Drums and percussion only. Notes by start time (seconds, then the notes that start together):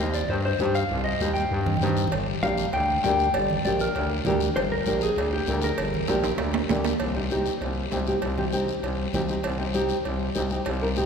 0.14 short guiro
0.29 high conga, long guiro
0.59 high conga, short guiro
0.75 short guiro
0.89 high conga, long guiro
1.21 high conga, short guiro
1.36 high conga, short guiro
1.51 long guiro
1.66 low conga
1.77 low conga
1.81 short guiro
1.87 low conga
1.97 short guiro
2.07 low conga
2.12 cowbell, high conga, long guiro
2.43 high conga, short guiro
2.58 short guiro
2.73 cowbell, high conga, long guiro
3.04 high conga, low timbale, short guiro
3.19 short guiro
3.34 cowbell, high conga, long guiro
3.50 low conga
3.65 high conga, short guiro
3.79 short guiro
3.95 cowbell, high conga, long guiro
4.25 high conga, low conga, short guiro
4.40 short guiro
4.55 cowbell, long guiro
4.86 high conga, short guiro
5.01 short guiro
5.16 cowbell, high conga, long guiro
5.46 high conga, short guiro
5.62 short guiro
5.78 cowbell, high conga, long guiro
5.94 low conga
6.07 high conga, high timbale, short guiro
6.24 high timbale, short guiro
6.38 cowbell, high conga, low timbale, long guiro
6.54 low timbale
6.69 high conga, low conga, low timbale, short guiro
6.85 low timbale, short guiro
7.00 cowbell, high conga, long guiro
7.30 high conga, short guiro
7.46 short guiro
7.61 cowbell, high conga, long guiro
7.91 high conga, low timbale, short guiro
8.07 short guiro
8.22 cowbell, high conga, long guiro
8.38 low conga
8.52 high conga, short guiro
8.68 short guiro
8.83 cowbell, high conga, long guiro
9.14 high conga, low conga, short guiro
9.28 short guiro
9.43 cowbell, high conga, long guiro
9.74 high conga, short guiro
9.89 short guiro
10.04 cowbell, high conga, long guiro
10.35 high conga, short guiro
10.50 short guiro
10.65 cowbell, high conga, long guiro
10.96 high conga, short guiro